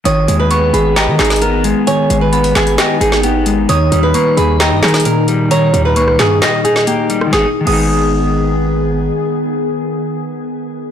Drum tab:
CC |--------------------------------|--------------------------------|--------------------------------|--------------------------------|
HH |x---x---x---x---x---xxxxx---x---|x---x---x-x-x-x-x---x---x---x---|x---x---x---x---x---xxxxx---x---|x---x---x---x---x---x---x---x---|
CP |----------------x---x-----------|------------x---x---------------|----------------x---x-----------|------------x---x---------------|
SD |----------------o---o-o---------|------------o---o-----o---------|----------------o---o-o---------|----------r-o---o-----o-------r-|

CC |------x-------------------------|--------------------------------|
HH |--------------------------------|--------------------------------|
CP |--------------------------------|--------------------------------|
SD |o-------------------------------|--------------------------------|